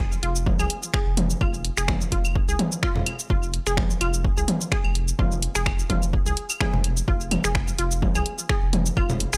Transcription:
Already playing: F1
0.12 shaker
0.23 F1 F4, closed hi-hat
0.36 shaker
0.46 kick, high tom
0.59 C2 G#4, claves, shaker
0.70 closed hi-hat
0.83 shaker
0.94 G#4, finger snap, kick
1.07 F1
1.17 closed hi-hat, high tom
1.30 shaker
1.41 F1 F4, kick, claves
1.54 shaker
1.65 closed hi-hat
1.77 F1 G#4, finger snap, shaker
1.88 finger snap, kick, high tom
2.01 shaker
2.12 F1 F4, kick, closed hi-hat
2.25 claves, shaker
2.35 kick
2.48 C2 G#4, shaker
2.59 closed hi-hat, high tom
2.72 shaker
2.83 F4, finger snap, kick
2.96 F2, low conga
3.06 closed hi-hat, claves
3.19 shaker
3.30 F1 F4, kick
3.43 shaker
3.54 closed hi-hat
3.67 F1 G#4, finger snap, shaker
3.77 finger snap, kick, high tom
3.90 shaker
4.01 F1 F4, closed hi-hat, claves
4.14 shaker
4.24 kick
4.37 C2 G#4, shaker
4.48 closed hi-hat, high tom
4.61 shaker
4.72 G#4, finger snap, kick
4.84 F1, claves
4.95 closed hi-hat
5.08 shaker
5.19 F1 F4, kick, high tom
5.32 shaker
5.42 closed hi-hat
5.55 F1 G#4, finger snap, shaker
5.66 finger snap, kick, claves
5.79 shaker
5.90 F1 F4, kick, closed hi-hat, high tom
6.03 shaker
6.13 kick
6.26 C2 G#4, shaker
6.37 closed hi-hat
6.50 claves, shaker
6.61 G#4, finger snap, kick, high tom
6.74 F1, low conga
6.84 closed hi-hat
6.97 shaker
7.08 F1 F4, kick
7.21 shaker
7.31 closed hi-hat, high tom, claves
7.44 F1 G#4, finger snap, shaker
7.55 finger snap, kick
7.68 shaker
7.79 F1 F4, closed hi-hat
7.91 shaker
8.02 kick, high tom
8.15 C2 G#4, claves, shaker
8.26 closed hi-hat
8.39 shaker
8.49 G#4, finger snap, kick
8.62 F1
8.73 closed hi-hat, high tom
8.86 shaker
8.97 F1 F4, kick, claves
9.10 low conga, shaker
9.20 closed hi-hat
9.33 F1 G#4, finger snap, shaker

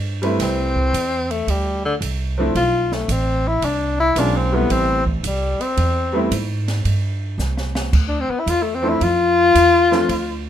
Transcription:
Already playing: G2
0.22 G3 A3 C4 E4 B4, ride
0.39 C2 C4, kick, snare, ride
0.76 kick
0.93 E2, kick, hi-hat pedal, ride
1.31 A3, ride
1.47 D2 G3, kick, ride
1.85 D3
2.01 C2, kick, hi-hat pedal, ride
2.38 F3 A3 C4 D4 E4
2.55 B1 F4, kick, ride
2.92 A3, snare
3.08 A1 C4, kick, hi-hat pedal, ride
3.48 E4
3.62 C2 D4, kick, ride
4.00 E4
4.16 B1 G#3 A#3 C4 C#4 D4 F4, kick, hi-hat pedal, ride
4.37 C4
4.52 G3 A3 B3 C4 E4
4.70 A1 C4, kick, ride
5.07 E3, kick
5.23 C2 G3, kick, hi-hat pedal, ride
5.60 C4, muted upright bass stroke, ride
5.77 E2, kick, ride
6.13 G3 A3 B3 C4 E4
6.31 G#2, kick, hi-hat pedal, ride
6.68 snare, ride
6.85 G2, kick, ride
7.38 C2, snare, hi-hat pedal
7.57 snare
7.75 snare
7.93 D2, kick, crash
8.09 D4
8.21 C4
8.28 B3, muted upright bass stroke
8.40 E4
8.46 E2 F4, kick, hi-hat pedal, ride
8.63 A3
8.75 C4
8.82 F3 A3 C4 D4 E4
8.89 E4
9.01 F2 F4, kick, ride
9.55 E2, kick, hi-hat pedal, ride
9.91 F3 A3 C4 D4 F4, snare
10.09 D2, kick, ride

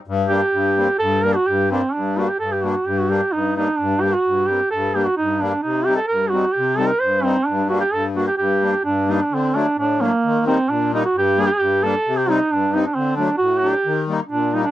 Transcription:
0.07 G2
0.28 G3 A#3 D4 G4
0.53 G2
0.76 G3 A#3 C4
0.99 G2 A4
1.23 G3 A#3 D4 A#4
1.36 F#4
1.46 G2 G4
1.70 G3 A#3 C4 D4
1.93 G2 D4
2.16 G3 A#3 D4 F#4
2.29 G4
2.40 G2 A4
2.52 G4
2.63 G3 A#3 D4 F#4
2.86 G2 G4
2.99 F#4
3.09 G3 A#3 D4 G4
3.32 G2 D#4
3.56 G3 A#3 D4 D#4
3.77 G2 D4
4.01 G3 A#3 D4 G4
4.13 F#4
4.26 G2
4.48 G3 A#3 C4 G4
4.71 G2 A4
4.95 G3 A#3 D4 G4
5.06 F#4
5.17 G2 D#4
5.41 G3 A#3 D4
5.63 C3 D#4
5.85 G3 C4 D#4 G4
5.96 A4
6.07 G2 A#4
6.30 G3 C4 F#4
6.34 D#4
6.53 G4
6.57 C3
6.78 G3 C4 D#4 A4
6.88 A#4
7.00 G2 C5
7.23 G3 C4 D#4
7.46 G2 D4
7.69 G3 A#3 D4 F#4
7.80 G4
7.93 G2 A4
8.15 G3 A#3 D4 F#4
8.27 G4
8.38 G2 G4
8.61 G3 A#3 D4
8.85 G2 D4
9.07 G3 A#3 D4 D#4
9.23 D4
9.31 D3 C4
9.54 F#3 A3 D4
9.77 A2 D4
9.99 F#3 A3 A#3 D4
10.24 D#3
10.45 G3 A#3 C4 D#4
10.69 A#2 D4
10.92 G3 A#3 D#4
11.05 F#4
11.15 G2 G4
11.37 G3 A#3 D4
11.60 G2
11.83 G3 A#3 D4 A4
12.07 C3
12.18 G4
12.28 G3 C4 D#4
12.51 G2 D4
12.73 G3 C4 D#4
12.86 D4
12.95 D3 C4
13.16 F#3 A3 D4
13.38 A2 F#4
13.59 F#3 F#4
13.63 A3 D4
13.70 G4
13.86 D#3
14.08 G3 A#3 D#4
14.29 A#2 D4
14.53 G3 A#3 D#4
14.64 D4

